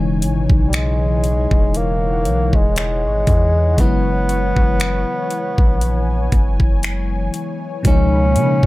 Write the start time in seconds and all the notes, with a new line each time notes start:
Already playing: E1 B2 C#3 E3 G#3 D#4 C#5 G#5
0.22 G#1, closed hi-hat
0.50 B1, kick
0.68 G3
0.73 G#3, finger snap, closed hi-hat
1.24 closed hi-hat
1.51 E1, kick
1.74 A#3 F#5, closed hi-hat
2.25 B1, closed hi-hat
2.53 E1 G#3, kick
2.76 G#3, finger snap, closed hi-hat
3.04 G#1
3.27 E2, kick, closed hi-hat
3.76 F#1 C#3 F#3 G#3 B3, kick, closed hi-hat
3.81 B3 E4
4.29 closed hi-hat
4.57 F#1, kick
4.80 finger snap, closed hi-hat
5.30 closed hi-hat
5.58 A#1, kick
5.81 G#5, closed hi-hat
6.32 F#1, kick, closed hi-hat
6.60 kick
6.83 finger snap, closed hi-hat
7.34 closed hi-hat
7.83 C#2 B2 F3 G#3 A#3 D#4 F5 B5, kick, closed hi-hat
7.87 C#4 D#4
8.36 C#3, closed hi-hat
8.63 C#2, kick